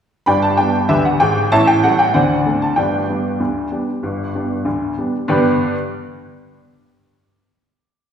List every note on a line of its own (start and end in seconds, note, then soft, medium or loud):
0.26 0.54 G1 medium
0.26 0.54 G2 medium
0.26 0.42 D5 medium
0.26 0.42 G5 medium
0.26 0.42 B5 medium
0.42 0.58 A5 medium
0.57 0.75 G3 soft
0.57 0.76 B3 soft
0.57 0.76 D4 soft
0.57 0.89 G5 medium
0.89 1.16 D2 medium
0.89 1.16 D3 medium
0.89 1.04 G4 medium
0.89 1.05 B4 medium
0.89 1.05 E5 medium
1.05 1.21 F#5 medium
1.20 1.46 G#1 medium
1.20 1.46 G#2 medium
1.20 1.52 G5 medium
1.52 1.78 A1 medium
1.52 1.79 A2 medium
1.52 1.67 C#5 medium
1.52 1.67 E5 medium
1.52 1.68 A5 loud
1.67 1.83 G5 medium
1.83 2.01 G3 medium
1.83 2.01 A3 soft
1.83 2.01 C#4 medium
1.83 1.99 F#5 medium
1.99 2.14 G5 medium
2.14 2.41 D2 medium
2.14 2.41 D3 medium
2.14 2.58 C5 medium
2.14 2.58 D5 medium
2.14 2.61 F#5 medium
2.46 2.63 A3 soft
2.46 2.63 C4 soft
2.46 2.63 D4 soft
2.62 2.77 A5 medium
2.76 3.04 G1 medium
2.76 3.04 G2 medium
2.76 4.62 B4 soft
2.76 4.62 D5 soft
2.76 4.65 G5 medium
3.09 3.26 G3 soft
3.09 3.27 B3 soft
3.09 3.27 D4 soft
3.40 3.67 D2 medium
3.40 3.67 D3 medium
3.72 3.89 G3 soft
3.72 3.89 B3 soft
3.72 3.89 D4 soft
4.03 4.30 G1 medium
4.03 4.30 G2 medium
4.35 4.52 G3 soft
4.35 4.52 B3 soft
4.35 4.53 D4 soft
4.65 4.92 D2 medium
4.65 4.93 D3 medium
4.98 5.15 G3 soft
4.98 5.15 B3 soft
4.98 5.16 D4 soft
5.28 5.63 G2 medium
5.28 5.64 D3 medium
5.28 5.64 B3 medium
5.28 5.64 D4 medium
5.28 5.64 G4 medium
5.28 5.64 B4 medium